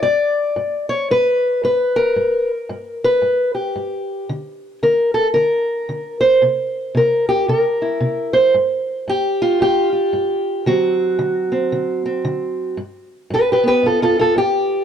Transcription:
0.03 G2 D5
0.56 G2
0.89 C#5
1.11 G2 B4
1.63 G2 B4
1.96 A#4
2.16 G2
2.69 G2
3.04 B4
3.22 G2
3.55 G4
3.76 G2
4.29 D3
4.83 D3 A#4
5.14 A4
5.34 D3 A#4
5.89 D3
6.21 C5
6.42 C3
6.95 C3 A#4
7.29 G4
7.48 C3 A#4
7.82 E4
8.00 C3
8.33 C5
8.54 G2
9.08 G2 G4
9.42 F4
9.61 G2 G4
9.93 F4
10.13 G2
10.66 D3 F#3 C4 F#4
11.19 D3
11.52 C4
11.72 D3
12.06 C4
12.25 D3
12.77 G2
13.30 G2 G4 B4
13.52 G4 B4
13.63 B3 G4
13.68 B4
13.83 G2 F4 A4
14.02 F4 A4
14.19 F4 A4
14.36 G2 G4

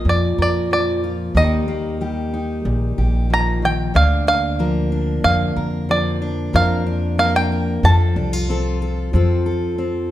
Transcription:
Already playing: F3 F4 A#4
0.05 F2 A#2
0.09 D5
0.38 F2 A#4
0.42 D5
0.71 F3 D5
1.04 F4
1.35 D#2 D#3 G3 A#3 D#4 G4 D#5
1.68 A#3
2.01 G3 G4
2.34 D#4
2.65 A#1 A#2
2.98 A#1 G4
3.30 F3 A#5
3.62 D#3 G5
3.94 D2 D3 D4 F5
4.27 A#3 F5
4.59 F3 A#4
4.92 D4
5.24 F2 D3 F5
5.56 F2 A#4
5.89 F3 D5
6.22 D4
6.53 F2 F3 A#4 F5
6.87 D4
7.18 A#3 A#4 F5
7.36 G5
7.52 A#4
7.83 F2 F3 A4 A5
8.16 C2 D4
8.33 F4
8.49 C4 A4
8.82 A4
9.13 F2 F3 C4 F4 A4
9.46 A4
9.78 C4

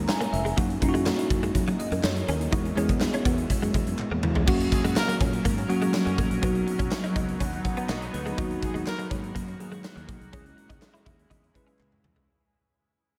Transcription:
Already playing: G#3 C#4 E4 A#4 A#5
0.08 G#5, snare, clap
0.21 A#3, closed hi-hat
0.33 F1 E5, muted clean electric guitar stroke, closed hi-hat
0.45 G#3, closed hi-hat
0.57 F#2 F#3 A#3 C#4 D#4 F#4, kick, closed hi-hat
0.70 closed hi-hat
0.82 F#2 A#3 C#4 D#4 E4, muted clean electric guitar stroke, kick, closed hi-hat
0.89 F#4
0.94 G#3, closed hi-hat
1.06 A#3, snare, clap
1.19 muted clean electric guitar stroke, closed hi-hat
1.30 F#2, kick, closed hi-hat
1.43 G#3, closed hi-hat
1.55 F#3, kick, closed hi-hat
1.67 F#3, closed hi-hat
1.79 D#5, muted clean electric guitar stroke, closed hi-hat
1.92 F#2 A#3, closed hi-hat
2.03 F#2 C#5, snare, clap
2.16 closed hi-hat
2.27 D#2 C#4 A#4, closed hi-hat
2.41 closed hi-hat
2.51 E2 G#3 B3 D#4 E4 F#4, kick, closed hi-hat
2.65 closed hi-hat
2.75 E2 G#3 B3 C#4 E4 G#4, closed hi-hat
2.89 muted clean electric guitar stroke, kick, closed hi-hat
3.01 muted clean electric guitar stroke, snare, clap
3.13 C#4, closed hi-hat
3.25 E2 B3, kick, closed hi-hat
3.38 closed hi-hat
3.50 muted clean electric guitar stroke, kick, closed hi-hat
3.62 F#2 G#3, closed hi-hat
3.74 E2 G#3, kick, closed hi-hat
3.87 F#2, closed hi-hat
3.99 muted fingered electric bass stroke, clap, high tom
4.11 E2 A#3
4.23 E3, muted clean electric guitar stroke, mid tom
4.35 G#3, floor tom
4.46 F#2 F#3 A#3 C#4 F#4 A#4, kick, crash
4.60 closed hi-hat
4.72 G#3 G#4, muted clean electric guitar stroke, kick, closed hi-hat
4.84 F#2 F#3 G#3 F#4, closed hi-hat
4.96 A#3 A#4, muted clean electric guitar stroke, snare, clap, tambourine
5.08 A#3, closed hi-hat
5.21 A#2 C#4, kick, closed hi-hat
5.33 closed hi-hat
5.45 G#2 A#3, kick, closed hi-hat
5.58 closed hi-hat
5.69 F#3 A#3 C#4 F#4, muted clean electric guitar stroke, closed hi-hat
5.82 G#3, closed hi-hat
5.94 muted clean electric guitar stroke, snare, clap, tambourine
6.06 F#2 F#3, closed hi-hat
6.18 A1 A#3, kick, closed hi-hat
6.31 A#1, closed hi-hat
6.42 B1 F#3 B3 D#4 F#4, kick, closed hi-hat
6.55 closed hi-hat
6.67 muted clean electric guitar stroke, closed hi-hat
6.79 B1 C#4, kick, closed hi-hat
6.91 muted clean electric guitar stroke, snare, clap, tambourine
7.04 D#4, closed hi-hat
7.16 C#2 D#4, kick, closed hi-hat
7.28 closed hi-hat
7.40 D#2 C#4, kick, closed hi-hat
7.53 closed hi-hat
7.64 F#5, muted clean electric guitar stroke, kick, closed hi-hat
7.77 B3, closed hi-hat
7.89 B1 A#3 D#5, snare, clap, tambourine
8.01 muted clean electric guitar stroke, closed hi-hat
8.13 D2 B4, closed hi-hat
8.26 G#3, closed hi-hat
8.37 D#2 D#3 F#3 A#3 D#4 F#4, kick, closed hi-hat
8.51 closed hi-hat
8.62 G#3 G#4, muted clean electric guitar stroke, kick, closed hi-hat
8.74 D#2 F#3 G#3 F#4, closed hi-hat
8.86 A#3 A#4, muted clean electric guitar stroke, snare, clap, tambourine
8.99 A#3, closed hi-hat
9.10 G#2 C#4, kick, closed hi-hat
9.23 closed hi-hat
9.35 F#2 A#3, kick, closed hi-hat
9.48 closed hi-hat
9.60 F#3 A#3 D#4 G#4, muted clean electric guitar stroke, closed hi-hat
9.72 G#3, closed hi-hat
9.84 muted clean electric guitar stroke, snare, clap, tambourine
9.96 D#2 F#3, closed hi-hat
10.08 B1 A#3, kick, closed hi-hat
10.21 C2, closed hi-hat
10.32 C#2 C#3 G#3 C#4 E4 G#4, kick, closed hi-hat
10.46 closed hi-hat
10.57 muted clean electric guitar stroke, closed hi-hat
10.69 C#2 D#4, kick, closed hi-hat
10.82 muted clean electric guitar stroke, snare, clap
10.94 E4, closed hi-hat
11.06 D#2 E4, kick, closed hi-hat
11.19 closed hi-hat
11.30 E2 D#4, kick, closed hi-hat
11.44 closed hi-hat
11.54 G#3 C#4 E4 B4, muted clean electric guitar stroke, kick, closed hi-hat
11.67 C#4, closed hi-hat
11.79 C#2 A#3, clap, high tom
11.92 muted clean electric guitar stroke, mid tom
12.04 C2, mid tom
12.16 G#3, floor tom

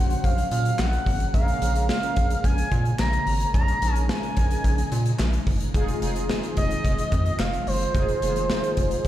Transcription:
Already playing: A#1 C#3 F#3 A#3 C#4 F#4 C5 F#5
0.10 closed hi-hat
0.24 A#1 F5, kick, closed hi-hat
0.38 closed hi-hat
0.51 A#2 F5, closed hi-hat
0.65 closed hi-hat
0.79 A#1 F#5, snare, clap
0.93 closed hi-hat
1.06 G#1, kick, open hi-hat
1.20 closed hi-hat
1.34 A#1 C#3 G#3 C#4 G#4 A#4 F5, kick, closed hi-hat
1.48 closed hi-hat
1.62 A#1 C#4 G#4 A#4, closed hi-hat
1.75 closed hi-hat
1.89 F5, snare
2.03 closed hi-hat
2.16 A#1, kick, closed hi-hat
2.30 closed hi-hat
2.44 A#1 G#5, kick, closed hi-hat
2.58 closed hi-hat
2.72 A#2, kick, closed hi-hat
2.85 closed hi-hat
2.99 A#1 A#5, snare, clap
3.13 closed hi-hat
3.27 G#1, open hi-hat
3.40 closed hi-hat
3.54 A#1 C#4 D#4 G#4 A#4 A#5, kick, closed hi-hat
3.68 closed hi-hat
3.82 A#1 C#4 G#4 A#4, closed hi-hat
3.94 G#5, closed hi-hat
4.09 G#5, snare
4.23 closed hi-hat
4.37 A#1, kick, closed hi-hat
4.51 closed hi-hat
4.64 A#1, kick, closed hi-hat
4.78 closed hi-hat
4.92 A#2, closed hi-hat
5.06 closed hi-hat
5.19 A#1, snare, clap
5.33 closed hi-hat
5.47 F#1, kick, open hi-hat
5.61 closed hi-hat
5.74 F1 D#3 C4 D#4 F4 G#4, kick, closed hi-hat
5.88 closed hi-hat
6.02 F1 D#4 F4 G#4, closed hi-hat
6.16 closed hi-hat
6.29 snare
6.43 closed hi-hat
6.57 F1 D#5, kick, closed hi-hat
6.71 closed hi-hat
6.85 F1, kick, closed hi-hat
6.98 closed hi-hat
7.12 F2, kick, closed hi-hat
7.26 closed hi-hat
7.40 F1 F5, snare, clap
7.53 closed hi-hat
7.67 F#1 C5, open hi-hat
7.81 closed hi-hat
7.95 F1 A#3 D#4 F4 G#4, kick, closed hi-hat
8.08 closed hi-hat
8.22 F1 D#4 F4 G#4, closed hi-hat
8.36 closed hi-hat
8.50 snare
8.64 closed hi-hat
8.77 F1, kick, closed hi-hat
8.91 closed hi-hat
9.05 F1, kick, closed hi-hat

